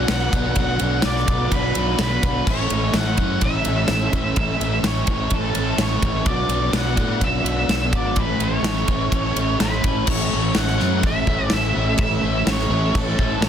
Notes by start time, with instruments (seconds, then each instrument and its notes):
Already playing: overdriven electric guitar B2 B3 D4 F#4
0.08 fingered electric bass B1, overdriven electric guitar F#3 B3 D4, lead electric guitar F#5, snare, ride
0.13 overdriven electric guitar F#4
0.32 fingered electric bass B1, overdriven electric guitar D4 F#4, kick, ride
0.37 overdriven electric guitar B3
0.55 fingered electric bass B1, overdriven electric guitar B2 F#3 B3, lead electric guitar F#5, kick, ride
0.61 overdriven electric guitar D4 F#4
0.79 fingered electric bass B1, overdriven electric guitar B3 D4 F#4, ride
1.02 fingered electric bass B1, overdriven electric guitar F#3 B3, lead electric guitar D5, snare, ride
1.06 overdriven electric guitar D4 F#4
1.16 snare
1.27 fingered electric bass B1, overdriven electric guitar B2 F#3 B3 D4 F#4, kick, ride
1.51 fingered electric bass B1, overdriven electric guitar F#3 B3 D4 F#4, lead electric guitar B4, kick, ride
1.75 fingered electric bass B1, overdriven electric guitar B2 F#3 B3 D4 F#4, ride
1.99 fingered electric bass B1, overdriven electric guitar F#3 B3 D4 F#4, lead electric guitar B4, snare, ride
2.23 fingered electric bass B1, overdriven electric guitar B3 D4 F#4, kick, ride
2.47 fingered electric bass A1, overdriven electric guitar A2 E3 A3 C#4 E4, lead electric guitar C#5, kick, crash
2.70 fingered electric bass A1, overdriven electric guitar C#4 E4, ride
2.74 overdriven electric guitar A3
2.93 fingered electric bass A1, overdriven electric guitar E3 A3 C#4 E4, lead electric guitar F#5, snare, ride
3.17 fingered electric bass F#2, overdriven electric guitar E3 A3 C#4 E4, kick, ride
3.22 overdriven electric guitar A2
3.41 fingered electric bass A1, overdriven electric guitar E3 A3 C#4, lead electric guitar E5, kick, ride
3.47 overdriven electric guitar E4
3.65 fingered electric bass A1, overdriven electric guitar E3 A3 C#4 E4, ride
3.69 overdriven electric guitar A2
3.88 fingered electric bass A1, overdriven electric guitar E3 A3, lead electric guitar E5, snare, ride
3.93 overdriven electric guitar C#4 E4
4.13 fingered electric bass A1, overdriven electric guitar C#4 E4, kick, ride
4.17 overdriven electric guitar A3
4.36 fingered electric bass A1, overdriven electric guitar A2 E3 A3 C#4, lead electric guitar E5, kick, ride
4.40 overdriven electric guitar E4
4.60 fingered electric bass A1, overdriven electric guitar C#4 E4, ride
4.64 overdriven electric guitar A3
4.83 fingered electric bass A1, overdriven electric guitar E3 A3 C#4, lead electric guitar C#5, snare, ride
4.87 overdriven electric guitar E4
5.07 fingered electric bass A1, overdriven electric guitar E3 A3 C#4 E4, kick, ride
5.11 overdriven electric guitar A2
5.30 fingered electric bass A1, overdriven electric guitar E3 A3 C#4, lead electric guitar A4, kick, ride
5.36 overdriven electric guitar E4
5.55 fingered electric bass A1, overdriven electric guitar E3 A3 C#4 E4, ride
5.59 overdriven electric guitar A2
5.77 fingered electric bass A1, overdriven electric guitar E3 A3, lead electric guitar C#5, snare, ride
5.82 overdriven electric guitar C#4 E4
6.02 fingered electric bass A1, overdriven electric guitar E4, kick, ride
6.06 overdriven electric guitar A3 C#4
6.25 fingered electric bass B1, overdriven electric guitar B2 F#3 B3 D4, lead electric guitar D5, kick, ride
6.30 overdriven electric guitar F#4
6.48 fingered electric bass B1, overdriven electric guitar D4 F#4, ride
6.53 overdriven electric guitar B3
6.73 fingered electric bass B1, overdriven electric guitar F#3 B3 D4, lead electric guitar F#5, snare, ride
6.77 overdriven electric guitar F#4
6.96 fingered electric bass A2, overdriven electric guitar B2 F#3 B3 D4 F#4, kick, ride
7.21 fingered electric bass B1, overdriven electric guitar F#3 B3 D4, lead electric guitar E5, kick, ride
7.25 overdriven electric guitar F#4
7.44 fingered electric bass B1, overdriven electric guitar B2 F#3 B3 D4 F#4, ride
7.68 fingered electric bass B1, overdriven electric guitar F#3 B3 D4 F#4, snare, ride
7.92 fingered electric bass G#1, overdriven electric guitar B3 D4 F#4, lead electric guitar D5, kick, ride
8.16 fingered electric bass A1, overdriven electric guitar A2 E3 A3 C#4 E4, lead electric guitar B4, kick, ride
8.39 fingered electric bass A1, overdriven electric guitar A3 C#4 E4, lead electric guitar C#5, ride
8.62 fingered electric bass A1, overdriven electric guitar E3 A3, snare, ride
8.66 overdriven electric guitar C#4 E4
8.88 fingered electric bass A1, overdriven electric guitar A2 E3 A3 C#4 E4, kick, ride
9.11 fingered electric bass A1, overdriven electric guitar E3 A3 C#4 E4, kick, ride
9.35 fingered electric bass A1, overdriven electric guitar A2 E3 A3 C#4 E4, ride
9.60 fingered electric bass A1, overdriven electric guitar E3 A3 C#4 E4, lead electric guitar B4, snare, ride
9.83 fingered electric bass A1, overdriven electric guitar A3 C#4 E4, kick, ride
10.06 fingered electric bass A1, overdriven electric guitar A2 E3 A3 C#4 E4, lead electric guitar C#5, kick, crash
10.31 fingered electric bass A1, overdriven electric guitar A3 C#4 E4
10.54 fingered electric bass A1, overdriven electric guitar E3 A3 C#4 E4, lead electric guitar F#5, snare, crash
10.67 snare
10.78 fingered electric bass F#2, overdriven electric guitar A2 E3 A3 C#4 E4, snare
11.02 fingered electric bass A1, overdriven electric guitar E3 A3 C#4, lead electric guitar E5, kick, crash
11.06 overdriven electric guitar E4
11.27 fingered electric bass A1, overdriven electric guitar A2 E3 A3 C#4 E4, kick
11.49 fingered electric bass A1, overdriven electric guitar E3 A3 C#4 E4, snare, crash
11.54 lead electric guitar E5
11.74 fingered electric bass A1, overdriven electric guitar A3 C#4 E4
11.98 fingered electric bass A1, overdriven electric guitar A2 E3 A3 C#4 E4, kick, crash
12.03 lead electric guitar E5
12.22 fingered electric bass A1, overdriven electric guitar A3 C#4 E4
12.45 fingered electric bass A1, overdriven electric guitar E3 A3 C#4 E4, snare, crash
12.51 lead electric guitar C#5
12.59 snare
12.69 fingered electric bass A1, overdriven electric guitar A2 E3 A3 C#4 E4
12.94 fingered electric bass A1, overdriven electric guitar E3 A3 C#4 E4, kick, crash
12.98 lead electric guitar A4
13.19 fingered electric bass A1, overdriven electric guitar A2 E3 A3 C#4 E4, kick
13.41 fingered electric bass A1, overdriven electric guitar E3 A3, snare, crash
13.45 overdriven electric guitar C#4 E4